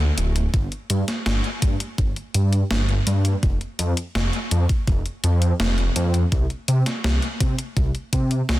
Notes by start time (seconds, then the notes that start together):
Already playing: D2
0.00 closed hi-hat
0.18 D1, closed hi-hat
0.36 closed hi-hat
0.54 G1, kick, closed hi-hat
0.72 closed hi-hat
0.90 G2, closed hi-hat
1.08 snare, closed hi-hat
1.26 G1, snare, closed hi-hat
1.44 closed hi-hat
1.62 G2, kick, closed hi-hat
1.80 closed hi-hat
1.98 G1, kick, closed hi-hat
2.16 closed hi-hat
2.34 G2, closed hi-hat
2.53 closed hi-hat
2.71 G1, snare, closed hi-hat
2.89 closed hi-hat
3.07 G2, closed hi-hat
3.25 closed hi-hat
3.43 F1, kick, closed hi-hat
3.61 closed hi-hat
3.79 F2, closed hi-hat
3.97 closed hi-hat
4.15 F1, snare, closed hi-hat
4.33 closed hi-hat
4.51 F2, closed hi-hat
4.69 kick, closed hi-hat
4.87 F1, kick, closed hi-hat
5.06 closed hi-hat
5.24 F2, closed hi-hat
5.42 closed hi-hat
5.60 F1, snare, closed hi-hat
5.78 closed hi-hat
5.96 F2, closed hi-hat
6.14 closed hi-hat
6.32 C2, kick, closed hi-hat
6.50 closed hi-hat
6.68 C3, closed hi-hat
6.86 snare, closed hi-hat
7.04 C2, snare, closed hi-hat
7.22 closed hi-hat
7.40 C3, kick, closed hi-hat
7.59 closed hi-hat
7.77 C2, kick, closed hi-hat
7.95 closed hi-hat
8.13 C3, kick, closed hi-hat
8.31 closed hi-hat
8.49 C2, snare, closed hi-hat